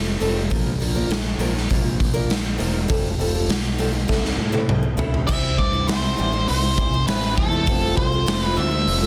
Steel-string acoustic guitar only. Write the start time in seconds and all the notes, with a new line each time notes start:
0.05 muted steel-string acoustic guitar stroke
0.20 G3 C4 F4 A4
0.50 F3 A#3 D4 A#4
0.80 F3 A#3 D4 A#4
0.95 F3 A#3 D4 A#4
1.39 F3 A#3 D4 A#4
1.54 muted steel-string acoustic guitar stroke
1.69 F3 A#3 D4 A#4
2.14 F3 A#3 D4 A#4
2.44 muted steel-string acoustic guitar stroke
2.58 F3 A#3 D4 A#4
2.88 G3 C4 F4 A4
3.19 G3 C4 F4 A4
3.34 G3 C4 F4 A4
3.78 G3 C4 F4 A4
3.92 muted steel-string acoustic guitar stroke
4.08 G3 C4 E4 A4
4.52 G3 C4 E4 A4
4.83 muted steel-string acoustic guitar stroke
4.97 G3 C4 E4 A4
5.27 C3 E3 G3 C4 E4
5.73 G3 C4 E4
5.88 C3 E3 G3 C4 E4
6.17 E3 G3 C4 E4
6.33 muted steel-string acoustic guitar stroke
6.62 G3 C4 E4
6.77 E3 G3 C4 E4
6.93 muted steel-string acoustic guitar stroke
7.08 C3 E3 G3 C4 E4
7.22 G3 C4 E4
7.52 G3 C4 E4
7.66 F3 A3 C4 F4
8.12 A3 C4 F4
8.26 F3 A3 C4 F4
8.56 F3 A3 C4 F4
8.71 muted steel-string acoustic guitar stroke
9.00 A3 C4 F4